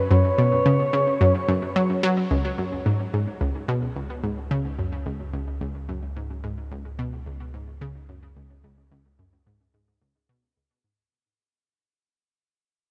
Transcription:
0.00 0.12 B4 loud
0.11 0.31 F#2 medium
0.11 2.03 C#5 loud
0.38 0.58 B2 medium
0.66 0.86 C#3 medium
0.93 1.05 C#3 medium
1.21 1.33 F#2 medium
1.48 1.74 F#2 medium
1.76 2.02 F#3 medium
2.03 2.23 F#3 loud
2.31 11.09 C#2 medium
2.31 2.51 C#2 medium
2.58 2.78 F#2 medium
2.86 3.06 G#2 medium
3.14 3.26 G#2 medium
3.41 3.53 C#2 medium
3.68 3.89 B2 loud
3.96 4.08 C#2 medium
4.24 4.44 G#2 medium
4.51 4.71 C#3 loud
4.79 4.99 F#2 medium
5.06 5.26 C#2 medium
5.34 5.60 C#2 medium
5.61 5.81 C#2 medium
5.89 6.09 F#2 medium
6.16 6.36 G#2 medium
6.44 6.56 G#2 medium
6.71 6.83 C#2 medium
6.99 7.19 B2 medium
7.26 7.38 C#2 medium
7.54 7.74 G#2 medium
7.81 8.01 C#3 medium
8.09 8.29 F#2 medium
8.36 8.56 C#2 medium
8.64 8.90 C#2 medium
8.91 9.12 C#2 medium
9.19 9.39 F#2 medium
9.46 9.67 G#2 medium
9.74 9.86 G#2 medium
10.02 10.14 C#2 medium
10.29 10.49 B2 medium
10.57 10.69 C#2 medium
10.84 11.04 G#2 medium

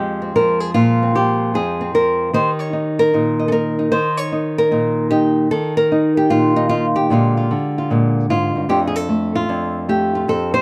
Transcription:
0.00 0.74 F2 medium
0.00 0.35 F3 medium
0.00 2.34 G#3 soft
0.00 0.21 C4 soft
0.00 0.34 G4 medium
0.22 1.02 C4 soft
0.36 1.14 F3 soft
0.36 0.60 A#4 medium
0.60 0.74 G#4 medium
0.74 1.54 A#2 medium
0.74 1.14 F4 medium
1.03 1.80 C4 soft
1.15 1.94 F3 medium
1.15 1.54 G4 medium
1.54 2.33 F2 medium
1.54 1.94 G#4 medium
1.81 2.34 C4 soft
1.94 2.33 F3 soft
1.94 2.34 A#4 medium
2.33 3.93 D#3 medium
2.33 2.73 D#4 soft
2.33 2.99 G4 soft
2.33 2.49 C5 medium
2.59 3.39 C#5 medium
2.73 3.14 D#4 medium
2.99 3.48 A#4 medium
3.13 3.93 A#2 medium
3.13 3.51 D#4 soft
3.39 3.91 D#5 soft
3.48 3.78 D#4 medium
3.48 3.52 A4 medium
3.52 4.32 A#4 medium
3.79 4.20 D#4 soft
3.92 5.51 D#3 medium
3.92 4.17 C5 medium
4.17 4.97 C#5 medium
4.32 4.72 D#4 medium
4.58 5.10 A#4 medium
4.71 5.51 A#2 medium
4.71 5.10 D#4 soft
5.11 5.49 D#4 medium
5.11 5.51 G4 medium
5.51 7.11 D#3 medium
5.51 5.77 A4 medium
5.77 6.17 A#4 medium
5.92 6.55 D#4 medium
6.17 6.71 G4 medium
6.30 7.09 A#2 medium
6.30 6.68 F4 medium
6.56 6.69 D#4 medium
6.69 7.09 D#4 medium
6.69 6.85 F4 medium
6.96 8.68 G4 medium
7.10 7.50 A#2 medium
7.10 7.50 D3 soft
7.10 7.90 G#3 soft
7.10 7.37 F4 soft
7.37 7.78 F4 soft
7.51 8.68 D3 medium
7.78 8.30 F4 soft
7.90 8.30 A#2 medium
7.90 8.70 G#3 soft
8.30 8.55 G#2 medium
8.30 8.69 F4 medium
8.56 8.69 G2 soft
8.69 9.48 F2 medium
8.69 9.09 A3 soft
8.69 9.49 D4 soft
8.69 8.87 F4 soft
8.69 8.79 G4 medium
8.87 8.96 G#4 medium
8.96 9.35 A4 medium
9.09 9.87 A3 medium
9.35 10.14 F4 medium
9.49 10.27 F2 medium
9.49 10.57 D4 soft
9.89 10.26 A3 medium
9.89 10.62 G4 medium
10.15 10.29 F4 soft
10.28 10.62 F2 medium
10.28 10.53 A4 medium
10.54 10.62 C5 medium

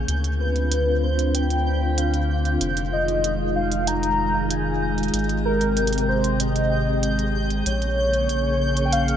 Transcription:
0.00 9.17 G6 medium
0.08 2.58 D2 medium
0.08 2.58 D3 medium
0.08 2.58 C4 medium
0.08 5.10 F4 medium
0.08 closed hi-hat medium
0.24 closed hi-hat soft
0.40 1.05 B4 medium
0.56 closed hi-hat soft
0.72 closed hi-hat medium
1.03 1.34 C5 medium
1.19 closed hi-hat medium
1.35 1.99 G5 loud
1.35 closed hi-hat medium
1.50 closed hi-hat soft
1.98 2.45 F5 loud
1.98 closed hi-hat medium
2.14 closed hi-hat soft
2.45 closed hi-hat soft
2.61 5.10 F1 medium
2.61 5.11 D#3 medium
2.61 7.62 G#3 medium
2.61 closed hi-hat medium
2.77 closed hi-hat soft
2.93 3.52 D#5 loud
3.08 closed hi-hat soft
3.24 closed hi-hat medium
3.56 3.89 F5 loud
3.72 closed hi-hat soft
3.87 4.52 A#5 loud
3.87 closed hi-hat medium
4.03 closed hi-hat soft
4.51 4.98 G#5 loud
4.51 closed hi-hat medium
4.98 closed hi-hat soft
5.03 closed hi-hat soft
5.08 closed hi-hat soft
5.14 7.63 G#1 medium
5.14 7.64 C3 medium
5.14 7.64 G4 medium
5.14 closed hi-hat medium
5.24 closed hi-hat soft
5.29 closed hi-hat soft
5.45 6.04 A#4 medium
5.61 closed hi-hat soft
5.77 closed hi-hat medium
5.87 closed hi-hat medium
5.93 closed hi-hat soft
5.98 closed hi-hat soft
6.08 6.41 C5 medium
6.24 closed hi-hat soft
6.40 7.35 D#5 loud
6.40 closed hi-hat medium
6.56 closed hi-hat soft
7.03 closed hi-hat medium
7.19 closed hi-hat soft
7.50 closed hi-hat soft
7.66 9.17 A#1 medium
7.66 9.17 C#3 medium
7.66 9.17 A#3 medium
7.66 9.17 G#4 medium
7.66 8.82 C#5 loud
7.66 closed hi-hat medium
7.82 closed hi-hat soft
8.14 closed hi-hat soft
8.29 closed hi-hat medium
8.77 closed hi-hat soft
8.86 8.94 G5 medium
8.93 9.17 F5 loud
8.93 closed hi-hat medium
9.08 closed hi-hat soft

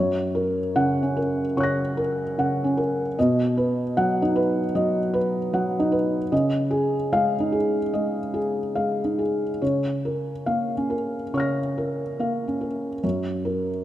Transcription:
0.00 1.53 F#2 medium
0.00 0.60 C#5 medium
0.35 0.99 A#4 medium
0.76 1.19 C#3 medium
0.76 1.40 F#5 medium
1.03 1.45 C#4 soft
1.17 1.81 A#4 medium
1.57 1.99 C#3 soft
1.57 2.21 C#5 medium
1.57 3.14 C#6 soft
1.57 3.15 F#6 soft
1.63 3.17 A#6 soft
1.97 2.61 A#4 medium
2.38 2.80 C#3 soft
2.38 3.02 F#5 medium
2.64 3.07 C#4 soft
2.77 3.17 A#4 medium
3.19 4.71 B2 medium
3.19 3.81 D#5 medium
3.57 4.20 B4 medium
3.97 4.38 F#3 medium
3.97 4.59 F#5 medium
4.22 4.64 D#4 medium
4.36 4.98 B4 medium
4.75 5.17 F#3 medium
4.75 5.38 D#5 medium
5.14 5.77 B4 medium
5.53 5.95 F#3 medium
5.53 6.16 F#5 medium
5.79 6.21 D#4 medium
5.92 6.31 B4 medium
6.32 7.89 C#3 medium
6.32 6.95 D#5 medium
6.71 7.35 G#4 medium
7.12 7.55 G#3 medium
7.12 7.77 F5 medium
7.40 7.83 D#4 medium
7.52 8.18 G#4 medium
7.93 8.37 G#3 soft
7.93 8.59 D#5 medium
8.34 9.00 G#4 medium
8.75 9.21 G#3 soft
8.75 9.43 F5 medium
9.04 9.50 D#4 soft
9.19 9.61 G#4 soft
9.62 11.30 C#3 medium
9.62 10.30 C#5 soft
10.05 10.73 A#4 soft
10.46 10.93 A#3 soft
10.46 11.16 F5 medium
10.77 11.22 C#4 soft
10.90 11.59 A#4 soft
11.34 13.00 C#3 soft
11.34 12.02 C#5 soft
11.34 13.00 C#6 soft
11.34 13.02 F6 soft
11.40 13.03 A#6 soft
11.78 12.45 A#4 soft
12.19 12.65 A#3 soft
12.19 12.88 F5 soft
12.48 12.93 C#4 soft
12.61 13.03 A#4 soft
13.04 13.84 F#2 medium
13.04 13.70 C#5 soft
13.45 13.84 A#4 soft

